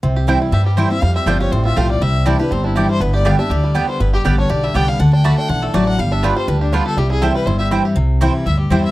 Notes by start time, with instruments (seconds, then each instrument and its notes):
0.03 upright bass C2, steel-string acoustic guitar C3, five-string banjo C4
0.16 five-string banjo G4
0.27 steel-string acoustic guitar E3 G3 C4 E4, five-string banjo G3, mandolin C4 E4 C5 G5
0.42 five-string banjo E4
0.52 upright bass G2, steel-string acoustic guitar G2, five-string banjo G4, fiddle E5
0.66 five-string banjo G3, fiddle G4
0.77 steel-string acoustic guitar E3 G3 C4 E4, mandolin C4 E4 C5 G5, five-string banjo C4, fiddle C5
0.90 five-string banjo G3, steel-string acoustic guitar C4 E4, fiddle E5
1.01 steel-string acoustic guitar F2, upright bass F2, five-string banjo G3, fiddle F5
1.15 five-string banjo C4, fiddle E5
1.26 upright bass G1, steel-string acoustic guitar F3 G3 C4 F4, mandolin A3 F4 C5 G5, five-string banjo F4, fiddle D5
1.40 steel-string acoustic guitar C4 F4, five-string banjo G4, fiddle C#5
1.52 upright bass A1, steel-string acoustic guitar A2, five-string banjo C4, fiddle C5
1.65 five-string banjo F4, fiddle E5
1.76 upright bass B1, steel-string acoustic guitar F3 G3 C4 F4, mandolin A3 F4 C5 G5, five-string banjo G4, fiddle F5
1.90 five-string banjo G3, fiddle D5
2.01 upright bass C2, steel-string acoustic guitar C3, five-string banjo G3, fiddle E5
2.26 steel-string acoustic guitar E3 G3 D4 E4, mandolin C4 E4 D5 G5, five-string banjo D4, fiddle D5
2.39 steel-string acoustic guitar D4 E4, five-string banjo G4, fiddle B4
2.51 upright bass G1, steel-string acoustic guitar G2, five-string banjo C4, fiddle C5
2.64 five-string banjo D4, fiddle E4
2.76 steel-string acoustic guitar E3 G3 D4 E4, mandolin C4 E4 D5 G5, five-string banjo G4, fiddle G4
2.89 five-string banjo G3, fiddle C5
3.00 upright bass G1, five-string banjo B3, fiddle B4
3.14 five-string banjo G4, fiddle D5
3.25 steel-string acoustic guitar D3 G3 B3 G4, five-string banjo G3, mandolin B3 G4 D5 G5, fiddle F5
3.38 steel-string acoustic guitar B3 G4, five-string banjo D4, fiddle E5
3.50 upright bass D2, steel-string acoustic guitar D3, five-string banjo G4, fiddle D5
3.64 five-string banjo G3
3.75 steel-string acoustic guitar D3 G3 B3 G4, mandolin B3 G4 D5 G5, five-string banjo B3
3.88 five-string banjo G3, fiddle C5
4.00 upright bass G1, steel-string acoustic guitar G2, five-string banjo B3, fiddle B4
4.13 five-string banjo G4, fiddle G4
4.24 upright bass A1, steel-string acoustic guitar D3 G3 B3 G4, five-string banjo G3, mandolin B3 G4 D5 G5
4.38 five-string banjo D4, fiddle C#5
4.49 upright bass B1, steel-string acoustic guitar D3, five-string banjo G4, fiddle D5
4.64 five-string banjo G3, fiddle E5
4.74 upright bass C2, steel-string acoustic guitar D3 G3 B3 G4, mandolin B3 G4 D5 G5, five-string banjo B3, fiddle G5
4.88 five-string banjo G3, fiddle F5
4.99 upright bass D2, steel-string acoustic guitar D3, five-string banjo D4, fiddle F#5
5.13 five-string banjo D4, fiddle G5
5.24 steel-string acoustic guitar D3 A3 D4 F#4, mandolin A3 F#4 D5 A5, five-string banjo A3, fiddle B5
5.37 five-string banjo D4, fiddle G5
5.48 upright bass B1, steel-string acoustic guitar E3, five-string banjo D4, fiddle F#5
5.62 five-string banjo A3, fiddle A4
5.74 upright bass A1, steel-string acoustic guitar F#3, mandolin A3 F#4 D5 A5, five-string banjo D4, fiddle D5
5.87 five-string banjo D4, fiddle F#5
5.98 upright bass G1, five-string banjo G3, steel-string acoustic guitar G3, fiddle F5
6.12 five-string banjo D4, fiddle E5
6.23 steel-string acoustic guitar G3 B3 F4, mandolin B3 F4 B4 G5, five-string banjo G4, fiddle D5
6.36 five-string banjo G3, fiddle C5
6.48 upright bass D2, steel-string acoustic guitar D3, five-string banjo D4, fiddle B4
6.61 fiddle D4, five-string banjo G4
6.72 steel-string acoustic guitar G3 B3 F4, mandolin B3 F4 B4 G5, five-string banjo D4, fiddle F4
6.86 five-string banjo G4, fiddle A4
6.97 upright bass C2, steel-string acoustic guitar C3, five-string banjo G3, fiddle G4
7.10 five-string banjo E4, fiddle G#4
7.22 steel-string acoustic guitar E3 G3 C4 E4, mandolin C4 E4 C5 G5, five-string banjo G4, fiddle A4
7.35 five-string banjo G3, fiddle B4
7.45 upright bass G1, steel-string acoustic guitar G2, five-string banjo E4, fiddle C5
7.58 five-string banjo G4, fiddle E5
7.71 steel-string acoustic guitar E3 G3 C4 E4, mandolin C4 E4 C5 G5, five-string banjo E4
7.85 five-string banjo G4
7.96 upright bass C2, steel-string acoustic guitar C3
8.21 steel-string acoustic guitar E3 G3 C4 E4, mandolin C4 E4 C5 G5
8.46 upright bass D2, steel-string acoustic guitar G2, fiddle E5
8.59 fiddle G4
8.70 upright bass E2, steel-string acoustic guitar E3 G3 C4 E4, mandolin C4 E4 C5 G5, fiddle C5
8.84 fiddle E5